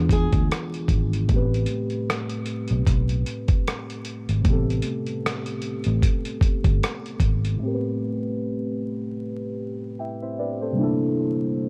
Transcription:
Already playing: fingered electric bass E2, synth keys E3 B3 D4 F4 G#4
0.09 nylon-string guitar G#4, kick, closed hi-hat
0.33 fingered electric bass D2, kick, closed hi-hat
0.51 cross-stick, closed hi-hat
0.74 closed hi-hat
0.88 fingered electric bass G#1, kick, closed hi-hat
1.13 closed hi-hat
1.25 synth keys A2 A3, kick, closed hi-hat
1.30 fingered electric bass A1, synth keys B3
1.34 synth keys C4 G4 B4
1.54 closed hi-hat
1.66 closed hi-hat
1.90 closed hi-hat
2.10 cross-stick, closed hi-hat
2.29 closed hi-hat
2.46 closed hi-hat
2.68 fingered electric bass B1, closed hi-hat
2.87 fingered electric bass B1, kick, closed hi-hat
3.09 closed hi-hat
3.26 closed hi-hat
3.48 kick, closed hi-hat
3.67 cross-stick, closed hi-hat
3.90 closed hi-hat
4.05 closed hi-hat
4.29 fingered electric bass G#1, closed hi-hat
4.41 synth keys C3 A3, closed hi-hat
4.45 fingered electric bass A1, synth keys B3, kick
4.50 synth keys C4 G4 A4
4.70 closed hi-hat
4.82 closed hi-hat
5.06 closed hi-hat
5.26 cross-stick, closed hi-hat
5.46 closed hi-hat
5.62 closed hi-hat
5.84 fingered electric bass A1, closed hi-hat
6.02 kick, closed hi-hat
6.25 closed hi-hat
6.41 kick, closed hi-hat
6.64 fingered electric bass G1, kick, closed hi-hat
6.83 cross-stick, closed hi-hat
7.06 closed hi-hat
7.20 fingered electric bass G#1, kick, closed hi-hat
7.45 closed hi-hat
7.56 synth keys A2 A3
7.62 synth keys C4 G4
7.67 synth keys A#4
7.74 synth keys B4
9.99 synth keys E5 G5
10.22 synth keys C5 E5
10.39 synth keys B4 D5
10.61 synth keys A4 C5
10.72 synth keys C3 G3
10.76 synth keys A#3 D4
10.81 synth keys E4 A4

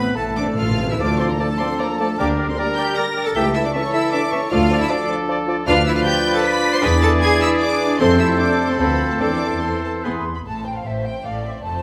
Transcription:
Already playing: double bass section A1, cello section A2, viola section E3 C4, french horn section B3, violin section C4 B5, clarinet B4, oboe B4, flute section B5
0.06 timpani A2
0.14 double bass section A1, timpani A2, cello section A2, viola section A3, french horn section A3, violin section E4 A5, clarinet A4, oboe A4, flute section A5
0.22 timpani A2
0.30 timpani A2
0.37 timpani A2, viola section E3 C4, violin section C4 D5 D6, cello section D4
0.46 timpani A2
0.54 timpani A2, cello section A2 F4, viola section A3, violin section E4 F5 F6
0.59 double bass section A1, timpani A2
0.71 timpani A2
0.78 timpani A2, viola section E3 C4, violin section C4
0.86 timpani A2, cello section E4
0.90 violin section E5 E6
0.99 double bass section D2, bassoon F3, french horn section F3 D4, viola section A3 F4, cello section D4, clarinet A4, trumpet A4, violin section D5 D6, oboe D5, flute section A5
1.19 bassoon F3, cello section C4, clarinet A4, violin section C5 C6, oboe D5, flute section A5
1.30 cello section A#3, violin section A#4 A#5
1.39 bassoon F3, french horn section F3 D4, cello section A3, clarinet A4, trumpet A4, violin section A4 A5, oboe D5, flute section A5
1.59 bassoon F3, cello section C4, clarinet A4, violin section C5 C6, oboe D5, flute section A5
1.79 bassoon F3, cello section A#3, clarinet A4, violin section A#4 A#5, oboe D5, flute section A5
1.99 bassoon F3, cello section A3, clarinet A4, violin section A4 A5, oboe D5, flute section A5
2.18 double bass section D2, bassoon G3, french horn section G3 D4, viola section A#3 G4, cello section D4, clarinet A#4, trumpet A#4, violin section D5 D6, oboe D5, flute section G5
2.38 bassoon G3, clarinet A#4, oboe D5, flute section G5
2.48 cello section C4, violin section C5 C6
2.58 bassoon G3, french horn section G3 D4, cello section A#3, clarinet A#4, violin section A#4 A#5, trumpet A#4, oboe D5, flute section G5
2.76 bassoon G3, cello section G4, clarinet A#4, oboe D5, flute section G5, violin section G5 G6
2.96 bassoon G3, french horn section G3 D4, trumpet A#4, cello section A#4, clarinet A#4, oboe D5, flute section G5, violin section A#5 A#6
3.17 bassoon G3, clarinet A#4, oboe D5, flute section G5
3.25 cello section A4, violin section A5 A6
3.35 double bass section C#2, bassoon E3, french horn section E3 E4, viola section A3 A4, cello section G4, trumpet A4, clarinet A4, oboe E5, violin section G5 G6, flute section A5
3.54 bassoon E3, cello section E4, clarinet A4, violin section E5 E6, oboe E5, flute section A5
3.65 cello section D4, violin section D5 D6
3.74 french horn section E3 E4, bassoon E3, cello section C#4, trumpet A4, clarinet A4, violin section C#5 C#6, oboe E5, flute section A5
3.93 bassoon E3, cello section E4, clarinet A4, oboe E5, violin section E5 E6, flute section A5
4.12 bassoon E3, cello section D4, clarinet A4, violin section D5 D6, oboe E5, flute section A5
4.31 bassoon E3, cello section C#4, clarinet A4, violin section C#5 C#6, oboe E5, flute section A5
4.50 double bass section D2, french horn section F3 D4, bassoon F3, viola section A3 A4, clarinet F4, cello section F4, trumpet A4, oboe D5, violin section F5 F6, flute section A5
4.70 bassoon F3, clarinet F4, oboe D5, flute section A5
4.80 cello section E4, violin section E5 E6
4.89 bassoon F3, french horn section F3 D4, cello section D4, clarinet F4, trumpet A4, violin section D5 D6, oboe D5, flute section A5
5.09 bassoon F3, clarinet F4, oboe D5, flute section A5
5.28 bassoon F3, clarinet F4, oboe D5, flute section A5
5.47 bassoon F3, clarinet F4, oboe D5, flute section A5
5.66 double bass section D2, french horn section F3 D4, bassoon F3, viola section D4 B4, cello section F4, clarinet F4, trumpet B4, oboe D5, violin section F5 F6, flute section B5
5.86 cello section E4, violin section E5 E6
5.96 cello section F4, violin section F5 F6
6.04 cello section G4, violin section G5 G6
6.34 cello section A4, violin section A5 A6
6.43 cello section B4, violin section B5 B6
6.73 cello section C5, violin section C6 C7
6.82 double bass section E2, bassoon E3, french horn section E3, viola section D4 G#4, trumpet G#4, clarinet G#4, cello section B4, violin section B5 B6
7.01 cello section A4, violin section A5 A6
7.21 cello section G#4, violin section G#5 G#6
7.41 cello section E4, violin section E5 E6
7.61 cello section D4, violin section D5 D6
7.99 double bass section F2, french horn section C3 C4, bassoon A3, cello section C4, viola section C4 A4, clarinet A4, trumpet A4, violin section C5 C6, oboe C5, flute section A5
8.19 cello section E4, violin section E5 E6
8.39 cello section D4, violin section D5 D6
8.69 cello section C4, violin section C5 C6
8.78 double bass section D2, bassoon F3, french horn section F3, cello section B3, viola section C4 A4, clarinet A4, violin section B4 B5, oboe C5, flute section A5
9.10 cello section A3, violin section A4 A5
9.20 double bass section E2, bassoon E3, french horn section E3, viola section C4 A4, cello section D4, clarinet A4, oboe C5, violin section D5 D6, flute section A5
9.62 bassoon E3, cello section C4, clarinet A4, oboe C5, violin section C5 C6, flute section A5
9.84 flute section A5, violin section A5
10.05 double bass section E2, bassoon E3, viola section B3 G#4, french horn section B3, clarinet G#4, trumpet G#4, oboe B4, flute section B5 C6, violin section C6
10.35 violin section B5, flute section B5
10.45 double bass section A1, cello section A2, violin section A3 A4 A5, flute section A5
10.65 violin section C4 C5 G5, flute section G5
10.75 violin section F5, flute section F5
10.84 double bass section A1, cello section A2, violin section A3 A4 E5, viola section C5, flute section E5
11.05 violin section C4 C5 G5, flute section G5
11.24 double bass section A1, cello section A2, violin section A3 A4 F5, viola section D5, flute section F5
11.44 violin section C4 C5 E5, flute section E5
11.63 double bass section F1, cello section F2, violin section A3 A4 A5, viola section C5, flute section A5

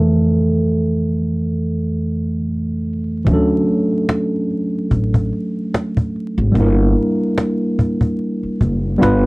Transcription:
Already playing: tine electric piano A4
0.00 tine electric piano F2 E3 A3
3.25 upright bass D2, tine electric piano E3 A3, cajon bass
3.29 tine electric piano F#3 C#4 D4
3.33 tine electric piano A4
3.68 cajon slap
3.93 cajon slap
4.09 cajon slap
4.51 cajon slap
4.75 cajon slap
4.91 upright bass A1, cajon bass
5.14 cajon bass
5.33 cajon slap
5.57 cajon slap
5.74 cajon slap
5.97 cajon bass
6.16 cajon slap
6.38 upright bass G#1
6.52 upright bass G1, tine electric piano G3 A#3, cajon bass
6.56 tine electric piano D4 E4
6.61 tine electric piano A#4
6.97 cajon slap
7.21 cajon slap
7.38 cajon slap
7.79 cajon bass
8.01 cajon bass
8.19 cajon slap
8.43 muted upright bass stroke
8.61 upright bass F#1, cajon bass, cajon slap
8.85 cajon slap
8.98 tine electric piano G3 B3 D4 F4
9.02 upright bass G1, tine electric piano B4, cajon slap

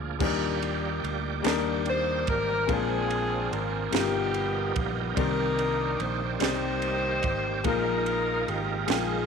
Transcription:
Already playing: fingered electric bass D2, grand piano A#2 G#3 A#3 D4 F4 A#4, tonewheel organ F3 A#3 D4 G#4
0.19 fingered electric bass D#2, grand piano A#2 G3 A#3 D4 D#4, tonewheel organ G3 A#3 F4 D5, kick, crash
0.23 tonewheel organ G4, grand piano A#4
0.63 ride bell
1.04 fingered electric bass D2, ride bell
1.43 fingered electric bass D#2, grand piano G3 A#3 D4 D#4 A#4, ride bell
1.47 snare
1.86 saxophone section C5, ride bell
2.27 fingered electric bass G#1, saxophone section A#4, kick, ride bell
2.66 fingered electric bass A#1, grand piano A#2 G#3 C4 D4 F4, tonewheel organ F3 A#3 C4 D4 G#4, kick, ride bell
2.70 saxophone section C4 D4 G#4, grand piano A#4
3.11 ride bell
3.52 fingered electric bass G#1, saxophone section A#4, ride bell
3.91 fingered electric bass G1, grand piano G2 B2 G3 D#4 F4 A#4, tonewheel organ F3 A#4, snare, ride bell
3.95 tonewheel organ G3 D#4 F#4, saxophone section A#3 B3 G4
4.01 tonewheel organ G4
4.34 ride bell
4.76 fingered electric bass A#1, kick, ride bell
5.15 fingered electric bass C2, grand piano C3 D#3 G3 C4 D5, tonewheel organ D#3 A#3 C4 G4 D5, saxophone section D4 A#4, kick, ride bell
5.19 saxophone section D#4, grand piano A#4
5.59 ride bell
6.00 fingered electric bass A#1, saxophone section C5, ride bell
6.39 fingered electric bass C2, grand piano G3 C4 D#4 G4 D5, saxophone section D#4 G4 C5, snare, ride bell
6.82 ride bell
7.23 fingered electric bass G#1, kick, ride bell
7.63 fingered electric bass A#1, grand piano A#2 G#3 A#3 D#4 F4 A#4, tonewheel organ F3 G#3 A#3 D#4 A#4, saxophone section D#4 F4 A#4, kick, ride bell
8.06 ride bell
8.48 fingered electric bass G#1, saxophone section G4, ride bell
8.86 fingered electric bass A#1, grand piano G#3 A#3 D#4 F4 G5, saxophone section G#4, snare, ride bell
8.91 saxophone section D#4 F4

